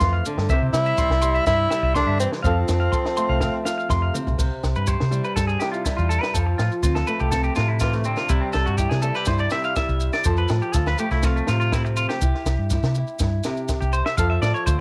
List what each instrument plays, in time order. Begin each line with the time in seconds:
Already playing: nylon-string guitar A3 C4 F4, tenor saxophone F4
0.00 fingered electric bass F2, nylon-string guitar E3, clean electric guitar C6, kick, snare, maracas
0.13 clean electric guitar F5
0.25 nylon-string guitar D3, maracas
0.38 fingered electric bass G2, snare
0.49 fingered electric bass C2, nylon-string guitar C3 E4 G4 C5, clean electric guitar E5, kick, maracas
0.62 fingered electric bass C3
0.73 fingered electric bass C3, nylon-string guitar G3, tenor saxophone E4, snare, maracas
0.85 clean electric guitar E5, maracas
0.98 nylon-string guitar G3, clean electric guitar C6, kick, snare, maracas
1.10 fingered electric bass C2, snare
1.22 nylon-string guitar G3, clean electric guitar C6, maracas
1.34 clean electric guitar E5, maracas
1.46 fingered electric bass G2, nylon-string guitar G3, tenor saxophone E4, clean electric guitar E5, kick, snare, maracas
1.70 nylon-string guitar G3, clean electric guitar E5, snare, maracas
1.83 fingered electric bass C2, clean electric guitar E5
1.94 nylon-string guitar D3, tenor saxophone D4, clean electric guitar C6, kick, snare, maracas
2.07 fingered electric bass G2, clean electric guitar E5
2.20 nylon-string guitar E3, tenor saxophone C4, maracas
2.33 snare
2.43 fingered electric bass F2, nylon-string guitar F3 C4 F4 A4, tenor saxophone C4, clean electric guitar F5, kick, maracas
2.68 fingered electric bass F2, nylon-string guitar C4, snare, maracas
2.80 clean electric guitar F5
2.92 nylon-string guitar A4, clean electric guitar C6, kick, maracas
3.06 snare
3.17 nylon-string guitar A3, clean electric guitar C6, maracas
3.29 fingered electric bass C2, clean electric guitar F5
3.41 nylon-string guitar C4, clean electric guitar F5, kick, snare, maracas
3.65 nylon-string guitar F4, clean electric guitar F5, snare, maracas
3.78 clean electric guitar F5, maracas
3.89 fingered electric bass F2, nylon-string guitar C3, clean electric guitar C6, kick, snare, maracas
4.02 clean electric guitar F5
4.14 nylon-string guitar C4, mid tom, maracas
4.27 fingered electric bass C2, floor tom, maracas
4.38 fingered electric bass C2, nylon-string guitar C3 C5, kick, crash, maracas
4.64 fingered electric bass C2, snare, maracas
4.75 fingered electric bass G2, clean electric guitar B4, maracas
4.87 nylon-string guitar G4, clean electric guitar C5, kick, maracas
5.00 fingered electric bass C3, snare
5.11 nylon-string guitar G3 E4, maracas
5.24 clean electric guitar B4, maracas
5.36 fingered electric bass G2, clean electric guitar A4, muted nylon-string guitar stroke, kick, snare, maracas
5.47 clean electric guitar G#4, maracas
5.59 nylon-string guitar C3 E4, clean electric guitar G4, snare, maracas
5.72 clean electric guitar F4, maracas
5.84 nylon-string guitar G3, clean electric guitar E4, kick, snare, maracas
5.97 fingered electric bass E2, clean electric guitar F4, maracas
6.09 clean electric guitar A4, maracas
6.21 clean electric guitar B4, snare, maracas
6.34 fingered electric bass F2, nylon-string guitar F3 F4, clean electric guitar A4, kick, maracas
6.46 muted clean electric guitar stroke
6.58 fingered electric bass A2, clean electric guitar F4, snare, maracas
6.71 maracas
6.83 fingered electric bass D2, nylon-string guitar C4, clean electric guitar F4, kick, snare, maracas
6.95 clean electric guitar A4, snare, maracas
7.07 nylon-string guitar A3 A4, clean electric guitar B4, maracas
7.20 fingered electric bass C2, clean electric guitar G4, maracas
7.32 nylon-string guitar C4, clean electric guitar A4, kick, snare, maracas
7.44 clean electric guitar G4, maracas
7.55 fingered electric bass A2, nylon-string guitar C3 C4, clean electric guitar F4, snare, maracas
7.68 clean electric guitar E4
7.80 nylon-string guitar E3, clean electric guitar F4, kick, snare, maracas
7.93 clean electric guitar A3, snare, maracas
8.04 nylon-string guitar D3, clean electric guitar C4, maracas
8.16 clean electric guitar F4, snare, maracas
8.29 fingered electric bass C2, nylon-string guitar C3 G3, clean electric guitar E4, kick, maracas
8.41 clean electric guitar C4
8.53 fingered electric bass C2, clean electric guitar A4, snare, maracas
8.66 fingered electric bass G2, clean electric guitar F#4, maracas
8.78 nylon-string guitar E4, clean electric guitar G4, kick, maracas
8.90 fingered electric bass C3, clean electric guitar G#4, snare, maracas
9.02 nylon-string guitar G3 E4, clean electric guitar A4, maracas
9.15 nylon-string guitar G4, clean electric guitar B4, maracas
9.25 fingered electric bass G2, nylon-string guitar E4, clean electric guitar C5, kick, snare, maracas
9.39 clean electric guitar D5, maracas
9.50 nylon-string guitar C3 G4, clean electric guitar E5, snare, maracas
9.64 clean electric guitar F5, maracas
9.76 nylon-string guitar E4, clean electric guitar E5, kick, snare, maracas
9.89 fingered electric bass C2, maracas
10.00 maracas
10.13 clean electric guitar D5, snare, maracas
10.24 fingered electric bass F2, nylon-string guitar F3 A4, clean electric guitar C5, kick, maracas
10.37 clean electric guitar B4, maracas
10.48 fingered electric bass A2, muted clean electric guitar stroke, snare, maracas
10.62 clean electric guitar G4, maracas
10.73 fingered electric bass D2, nylon-string guitar F4, clean electric guitar A4, kick, snare, maracas
10.87 clean electric guitar B4, snare, maracas
10.98 nylon-string guitar A3 F4, clean electric guitar G4, maracas
11.11 fingered electric bass C2, clean electric guitar E4, snare, maracas
11.23 nylon-string guitar C4, clean electric guitar F4, kick, snare, maracas
11.36 clean electric guitar A3, maracas
11.47 fingered electric bass A2, nylon-string guitar C3, clean electric guitar F4, snare, maracas
11.60 clean electric guitar F4, maracas
11.72 nylon-string guitar C4, clean electric guitar E4, kick, snare, maracas
11.85 muted clean electric guitar stroke, maracas
11.97 clean electric guitar F4, maracas
12.09 clean electric guitar G4, snare, maracas
12.21 fingered electric bass C2, nylon-string guitar E4, muted nylon-string guitar stroke, kick, maracas
12.35 snare
12.46 fingered electric bass C2, snare, maracas
12.59 fingered electric bass G2
12.70 nylon-string guitar E4, kick, snare, maracas
12.83 fingered electric bass C3, snare, maracas
12.95 nylon-string guitar E4, maracas
13.07 maracas
13.19 fingered electric bass G2, nylon-string guitar E4, kick, snare, maracas
13.44 nylon-string guitar C3 G4, snare, maracas
13.57 maracas
13.68 kick, snare, maracas
13.81 fingered electric bass C2, clean electric guitar G4, maracas
13.93 clean electric guitar C5, maracas
14.06 clean electric guitar E5, snare, maracas
14.17 fingered electric bass F2, nylon-string guitar F3 A4, clean electric guitar F5, kick, maracas
14.30 clean electric guitar E5
14.42 fingered electric bass A2, clean electric guitar D5, snare, maracas
14.54 clean electric guitar C#5, maracas
14.66 fingered electric bass D2, nylon-string guitar F4, clean electric guitar C5, kick, maracas